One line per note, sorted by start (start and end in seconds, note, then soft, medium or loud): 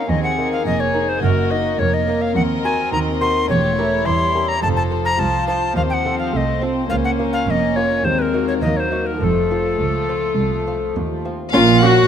0.00 0.11 F5 medium
0.09 0.62 D#2 medium
0.09 0.62 D#2 soft
0.09 0.65 C4 soft
0.09 1.20 G#4 soft
0.09 1.20 A#4 soft
0.09 0.23 D#5 medium
0.23 0.51 F#5 medium
0.38 0.63 A#3 soft
0.38 0.91 D#4 soft
0.38 0.91 A#4 soft
0.52 0.65 F5 medium
0.66 1.19 F1 medium
0.66 1.18 F2 medium
0.66 1.19 F2 soft
0.66 1.21 A#3 soft
0.66 0.82 D#5 medium
0.80 1.10 C#5 medium
0.94 1.20 A#3 soft
0.94 1.20 D#4 soft
0.94 1.20 A#4 soft
1.09 1.22 C5 medium
1.22 1.75 F#1 medium
1.22 1.75 F#2 soft
1.22 1.75 F#2 medium
1.22 1.77 A#3 soft
1.22 1.79 F#4 soft
1.22 1.52 A#4 medium
1.22 1.79 D#5 medium
1.51 1.76 A#3 soft
1.51 2.04 D#4 soft
1.51 2.04 A#4 soft
1.51 1.81 D#5 medium
1.78 2.32 F1 medium
1.78 2.32 F2 medium
1.78 2.32 F2 soft
1.78 2.34 A#3 soft
1.78 3.49 A#4 medium
1.78 2.36 C#5 soft
1.78 1.95 C#5 medium
1.94 2.23 D#5 medium
2.08 2.33 A#3 soft
2.08 2.33 D#4 soft
2.08 2.34 A#4 soft
2.22 2.35 F5 medium
2.35 2.88 D#2 medium
2.35 2.88 D#2 soft
2.35 3.49 C4 medium
2.35 2.91 D#5 soft
2.35 2.42 F#5 medium
2.64 3.17 C4 soft
2.64 3.17 F#4 soft
2.64 3.17 A#4 soft
2.64 2.92 G#5 medium
2.92 3.45 D#2 medium
2.92 3.45 D#3 medium
2.92 3.45 D#3 soft
2.92 3.48 D#5 medium
2.92 2.99 A#5 medium
3.21 3.46 C4 soft
3.21 3.47 F#4 soft
3.21 3.47 A#4 soft
3.21 3.49 C6 medium
3.49 4.02 E1 medium
3.49 4.02 E2 medium
3.49 4.02 E2 soft
3.49 4.06 A3 soft
3.49 3.77 G4 medium
3.49 4.62 C#5 medium
3.49 4.07 C#5 medium
3.78 4.30 C#4 soft
3.78 4.61 E4 medium
3.78 4.31 G4 soft
3.78 4.31 A#4 soft
4.06 4.59 E2 medium
4.06 4.59 E3 medium
4.06 4.59 E3 soft
4.06 4.62 G3 soft
4.06 4.50 C6 medium
4.34 4.60 C#4 soft
4.34 4.60 G4 soft
4.34 4.60 A#4 soft
4.48 4.62 A#5 medium
4.62 5.15 F1 medium
4.62 5.15 F2 medium
4.62 5.15 F2 soft
4.62 6.30 F3 medium
4.62 5.19 A4 soft
4.62 7.43 C5 medium
4.62 4.69 A5 medium
4.77 4.83 A5 medium
4.91 5.44 C4 soft
4.91 5.44 F4 soft
4.91 5.44 C5 soft
5.05 5.21 A#5 medium
5.19 5.72 C2 medium
5.19 5.76 F4 soft
5.19 5.47 A5 medium
5.48 5.73 C4 soft
5.48 5.73 F4 soft
5.48 5.74 C5 soft
5.48 5.76 A5 medium
5.76 6.29 D#2 soft
5.76 6.29 D#2 medium
5.76 6.90 C4 medium
5.76 5.82 F5 medium
5.90 6.18 F#5 medium
5.90 5.95 G5 medium
6.05 6.58 C4 soft
6.05 6.58 F4 soft
6.05 6.58 A4 soft
6.19 6.33 F5 medium
6.33 6.86 C2 medium
6.33 6.62 A3 medium
6.33 6.62 D#5 medium
6.33 6.38 F5 medium
6.61 6.90 C4 medium
6.61 6.87 C4 soft
6.61 6.87 F4 soft
6.61 6.88 A4 soft
6.89 7.43 C#2 medium
6.89 7.46 A#3 medium
6.89 8.02 C#4 medium
6.89 6.96 F5 medium
7.04 7.11 F#5 medium
7.19 7.72 A#3 soft
7.19 7.72 F4 soft
7.19 7.72 A#4 soft
7.33 7.47 F5 medium
7.47 8.00 F1 medium
7.47 8.00 F2 medium
7.47 8.00 F2 soft
7.47 8.03 A#3 soft
7.47 8.03 A#4 medium
7.47 7.78 D#5 medium
7.47 7.51 F5 medium
7.76 8.02 A#3 soft
7.76 8.02 F4 soft
7.76 8.02 A#4 soft
7.76 8.06 C#5 medium
8.04 8.58 D#2 medium
8.04 8.58 D#2 soft
8.04 8.62 G#3 soft
8.04 8.62 C4 soft
8.04 9.18 A#4 medium
8.04 8.20 C5 medium
8.19 8.47 A#4 medium
8.19 8.23 B4 medium
8.33 8.87 A#3 soft
8.33 8.87 D#4 soft
8.33 8.87 F#4 soft
8.48 8.54 C#5 medium
8.61 9.16 D#2 medium
8.61 9.16 D#3 medium
8.61 9.16 D#3 soft
8.61 9.20 F#3 soft
8.61 9.20 A#3 soft
8.61 8.78 D#5 medium
8.77 9.08 C5 medium
8.77 8.81 C#5 medium
8.91 9.17 A#3 soft
8.91 9.18 D#4 soft
8.91 9.18 F#4 soft
9.06 9.20 A#4 medium
9.20 9.75 F1 medium
9.20 9.75 F2 medium
9.20 9.75 F2 soft
9.20 11.30 F3 medium
9.20 11.29 A3 medium
9.20 11.33 F4 medium
9.20 10.96 A4 medium
9.20 9.25 A#4 medium
9.51 9.76 C4 soft
9.51 10.05 F4 soft
9.79 10.33 C#2 medium
10.09 10.35 C4 soft
10.09 10.35 F4 soft
10.37 10.91 C2 medium
10.37 10.92 C2 medium
10.67 10.93 C4 soft
10.67 11.21 F4 soft
10.95 11.49 D#2 medium
10.95 11.50 D#2 soft
11.25 11.51 C4 soft
11.25 11.51 F4 soft
11.53 12.04 A#1 medium
11.53 12.04 A#2 medium
11.53 12.01 A#2 medium
11.53 11.62 C#4 medium
11.53 11.61 F4 medium
11.53 11.84 F4 medium
11.53 11.80 F5 loud
11.68 11.91 F4 medium
11.82 12.05 C#4 medium
11.82 11.90 C#4 medium
11.82 12.07 F#4 medium
11.82 11.87 G4 medium
11.82 12.07 F#5 medium
11.86 12.07 F#4 medium